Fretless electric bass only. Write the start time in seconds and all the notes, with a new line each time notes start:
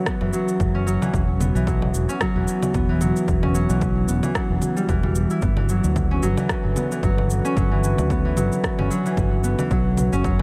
0.21 F#1
0.60 F#1
1.14 E1
1.55 B1
1.94 E1
2.35 E1
2.75 E1
3.28 E1
3.69 B1
4.08 E1
4.50 E1
4.89 E1
5.42 G1
5.84 D2
6.23 G1
6.64 G1
7.03 G1
7.57 G1
7.98 D2
8.37 G1
8.79 G1
9.17 G1
9.71 B1
10.13 F#1